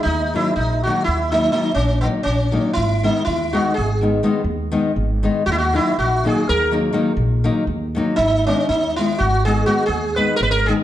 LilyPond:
<<
  \new Staff \with { instrumentName = "Sitar" } { \time 11/8 \key gis \minor \tempo 4 = 122 dis'8 e'8 dis'8 fis'8 e'8 dis'8 dis'8 cis'8 b8 cis'4 | e'8 dis'8 e'8 fis'8 gis'8 r2. | fis'32 e'32 fis'16 e'8 fis'8 gis'8 ais'8 r2. | dis'8 cis'8 dis'8 e'8 fis'8 gis'8 fis'8 gis'8 b'8 ais'32 b'32 ais'16 gis'8 | }
  \new Staff \with { instrumentName = "Nylon-string guitar" } { \time 11/8 \key gis \minor r8 <dis fis ais dis'>8 r8 <dis fis ais dis'>8 r8 <dis fis ais dis'>8 <dis fis ais dis'>8 r8 <dis fis ais dis'>8 r8 <dis fis ais dis'>8 | r8 <dis gis b dis'>8 r8 <dis gis b dis'>8 r8 <dis gis b dis'>8 <dis gis b dis'>8 r8 <dis gis b dis'>8 r8 <dis gis b dis'>8 | r8 <dis fis ais dis'>8 r8 <dis fis ais dis'>8 r8 <dis fis ais dis'>8 <dis fis ais dis'>8 r8 <dis fis ais dis'>8 r8 <dis fis ais dis'>8 | r8 <dis gis b dis'>8 r8 <dis gis b dis'>8 r8 <dis gis b dis'>8 <dis gis b dis'>8 r8 <dis gis b dis'>8 r8 <dis gis b dis'>8 | }
  \new Staff \with { instrumentName = "Upright bass" } { \clef bass \time 11/8 \key gis \minor dis,4 ais,,4 dis,4. ais,,4 ais,,4 | gis,,4 dis,4 gis,,4. dis,4 gis,,4 | dis,4 ais,,4 dis,4. ais,,4 dis,4 | gis,,4 dis,4 gis,,4. dis,4 gis,,4 | }
>>